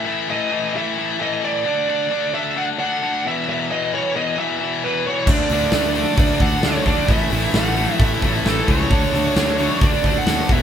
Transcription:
Already playing: E5
0.06 A2 E3 A3
0.28 A2 E3 A3 D#5
0.51 A2 E3 A3
0.74 A2 E3 A3 E5
0.97 A2 E3 A3
1.19 A2 E3 A3 D#5
1.43 A2 E3 A3 D5
1.65 D3 A3 D4
1.88 D3 A3 D4
2.11 D3 A3 D4
2.34 D3 A3 D4 E5
2.56 D3 A3 D4 F#5
2.78 D3 A3 D4 F#5
3.03 D3 A3 D4
3.25 E2 B2 E3 E5
3.48 E2 B2 E3 E5
3.71 E2 B2 E3 D#5
3.92 E2 B2 E3 C#5
4.15 E2 B2 E3 D#5
4.38 E2 B2 E3 E5
4.61 E2 B2 E3
4.84 E2 B2 E3 B4
5.07 E2 B2 E3 C#5
5.27 D2 D3 A3 D4 D5, kick, crash
5.49 D2 D3 A3 D4, snare, open hi-hat
5.72 D2 D3 A3 D4, snare, open hi-hat
5.95 D3 A3 D4, open hi-hat
6.17 D2 D3 A3 D4 D5, kick, open hi-hat
6.40 D2 D3 A3 D4 F#5, kick, open hi-hat
6.63 D2 D3 A3 D4 C#5, snare, open hi-hat
6.85 D2 D3 A3 D4 D5, kick, open hi-hat
7.07 A1 A2 E3 A3, kick, open hi-hat
7.12 E5
7.30 A1 A2 E3 A3, open hi-hat
7.54 A1 A2 E3 A3 F#5, snare, open hi-hat
7.75 A2 E3 A3, open hi-hat
7.99 A1 A2 E3 A3, kick, open hi-hat
8.03 E5
8.22 A1 A2 E3 A3, kick, open hi-hat
8.45 A1 A2 E3 A3, snare, open hi-hat
8.49 A4
8.68 C#2 A2 E3 A3 C#5, kick, open hi-hat
8.91 D2 D3 A3 D4, kick, open hi-hat
9.13 D2 D3 A3 D4, snare, open hi-hat
9.36 D2 D3 A3 D4, snare, open hi-hat
9.58 D3 A3 D4, open hi-hat
9.81 D2 D3 A3 D4 D5, kick, open hi-hat
10.03 D2 D3 A3 D4 D5, kick, open hi-hat
10.18 F#5
10.26 D#2 D3 A3 D4, snare, open hi-hat
10.49 E1 E2 B2 E3 E5, kick, open hi-hat

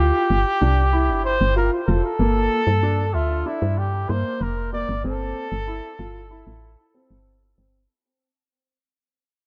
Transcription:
Already playing: D2 G4
0.00 F4
0.30 G1
0.61 C2 D4
0.93 E4
1.10 G1
1.24 C5
1.41 G1
1.56 F4 A#4
1.88 F1 F4 A4
2.19 G1 A#3
2.67 G2
2.83 D4
3.14 D2 F4 E5
3.46 D4 E4
3.62 G2
3.78 G4
4.09 G2 A#3 C5
4.41 F1 A#4
4.73 A#3 D5
4.89 G1
5.04 G1 C4 A4
5.52 G1
5.67 E4
5.99 G1 F4
6.31 E4
6.47 A1
6.94 C4
7.11 G1
7.58 G1 C4

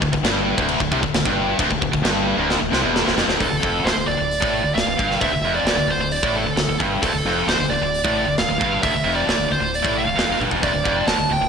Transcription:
0.01 D1 D2, kick
0.13 D1 D2, kick
0.23 G1 G2, snare, crash
0.57 D1 D2, kick
0.68 crash
0.80 D1 D2, kick
0.92 C2 C3, kick
1.03 D1 D2, kick
1.13 D1 D2, snare, crash
1.25 G1 G2, kick
1.59 D1 D2, kick, crash
1.71 D1 D2, kick
1.81 D1 D2, kick
1.93 D1 D2, kick
2.03 G1 G2, snare, crash
2.37 D1 D2
2.50 snare
2.60 D1 D2
2.70 C2 C3, snare
2.83 E1 E2
2.96 snare
3.05 D1 D2, snare
3.15 F1 F2, snare
3.27 D1 D2, snare
3.37 D1 D2, kick
3.41 A4, open hi-hat
3.49 D1 D2
3.60 F1 F2, kick
3.83 D1 D2 C5, snare, open hi-hat
3.95 D1 D2
4.06 D1 D2 D5
4.18 D1 D2
4.31 open hi-hat
4.41 A1 A2, kick
4.63 D1 D2
4.74 D1 D2 F5, snare, open hi-hat
4.86 D1 D2
4.97 G1 G2, kick
5.11 snare
5.21 D1 D2 E5, kick, open hi-hat
5.31 D1 D2
5.41 F1
5.45 F2
5.55 D5
5.63 D1, snare, open hi-hat
5.68 D2
5.75 D1
5.79 D2
5.86 D1
5.90 D2 C5
5.97 D1
6.01 D2
6.11 D5, open hi-hat
6.22 A1 A2, kick
6.36 A4
6.44 D1 D2
6.56 D1 D2, snare, open hi-hat
6.68 D1 D2
6.80 G1 G2, kick
7.02 D1 D2 A4, kick, open hi-hat
7.12 D1 D2
7.25 F1 F2
7.47 D1 D2 C5, snare, open hi-hat
7.59 D1 D2
7.69 D1 D2 D5
7.81 D1 D2
7.94 open hi-hat
8.04 A1 A2, kick
8.27 D1 D2
8.38 D1 D2 F5, snare, open hi-hat
8.49 D1 D2
8.61 G1 G2, kick
8.83 D1 D2 E5, kick, open hi-hat
8.93 D1 D2
9.04 F1 F2
9.16 D5
9.27 D1 D2, snare, open hi-hat
9.38 D1 D2
9.50 D1 D2 C5
9.60 D1 D2
9.74 D5, open hi-hat
9.83 A1 A2, kick
9.98 F5
10.05 D1 D2
10.17 E1 E2, snare, open hi-hat
10.29 F1 F2
10.40 G1 G2, high tom
10.51 F1 F2, floor tom
10.62 D1 D2 D5, kick, open hi-hat
10.74 D1 D2
10.85 F1 F2, kick
11.07 D1 D2 A5, snare, open hi-hat
11.18 D1 D2
11.29 D1 D2 G5
11.40 D1 D2

